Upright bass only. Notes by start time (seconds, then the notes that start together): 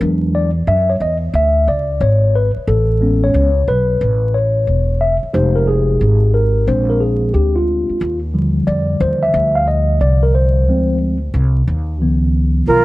0.01 E2
0.67 F#2
1.00 E2
1.34 D2
1.67 C#2
2.01 G#1
2.56 muted upright bass stroke
2.67 A1
3.34 C#2
3.68 B1
4.01 A1
4.67 E1
5.23 muted upright bass stroke
5.34 F1
6.01 G#1
6.67 A#1
7.34 D2
7.89 muted upright bass stroke
8.01 D#2
8.67 F2
9.00 D#2
9.34 D2
10.01 C2
10.67 D2
11.34 C2
11.67 D#2
12.01 C#2
12.67 B1